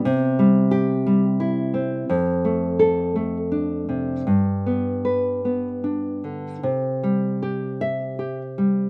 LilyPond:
\new Staff \with { instrumentName = "Nylon-string guitar" } { \time 6/8 \key c \major \tempo 4. = 53 << { r4 g'4 r4 | r4 a'4 r4 | r4 b'4 r4 | r4. e''4 r8 | } \\ { c8 g4 g8 e'8 c'8 | f,8 a4 a8 d'8 c8 | g,8 b4 b8 d'8 d8 | c8 g8 g'4 g'8 g8 | } >> }